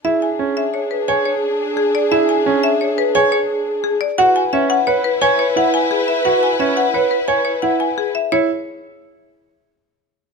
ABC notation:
X:1
M:6/4
L:1/8
Q:1/4=174
K:Emix
V:1 name="Marimba"
e g z e c B g c z2 G d | e g z e c B g c z2 G d | f g e f c B g c f g G e | f g e f c B g c f g G e |
c z8 z3 |]
V:2 name="Alto flute"
G12- | G8- G3 z | B12- | B8- B3 z |
z12 |]
V:3 name="String section"
[DG]12- | [DG]8- [DG]3 z | [EB]12- | [EB]8- [EB]3 z |
z12 |]
V:4 name="Grand piano"
E z C z3 c z4 z | E z C z3 c z4 z | F z C z B z c z E z3 | F z C z B z c z E z3 |
E z8 z3 |]